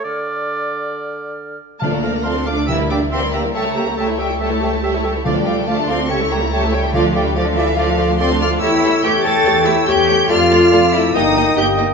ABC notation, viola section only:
X:1
M:4/4
L:1/16
Q:1/4=142
K:Dm
V:1 name="Viola section"
z16 | [F,F] [A,D] [F,F] [A,D] [F,F] [A,D] [F,F] [A,D] [E,G] [G,E] [E,G] [G,E] [E,G] [G,E] [E,G] [G,E] | [G,G] [A,E] [G,G] [A,E] [G,G] [A,E] [G,G] [A,E] [G,G] [A,E] [G,G] [A,E] [G,G] [A,E] [G,G] [A,E] | [F,F] [A,D] [F,F] [A,D] [F,F] [A,D] [F,F] [A,D] [G,G] [A,E] [G,G] [A,E] [G,G] [A,E] [G,G] [A,E] |
[F,F] [A,D] [F,F] [A,D] [F,F] [A,D] [F,F] [A,D] [F,F] [A,D] [F,F] [A,D] [F,F] [A,D] [F,F] [A,D] | [A,G]2 [A,G]2 [A,G]2 [A,G]2 [A,G]2 [A,G]2 [A,G]2 [A,G]2 | [A,F]2 [A,F]2 [A,F]2 [A,F]2 [B,_E]2 [B,E]2 [B,E]2 [B,E]2 |]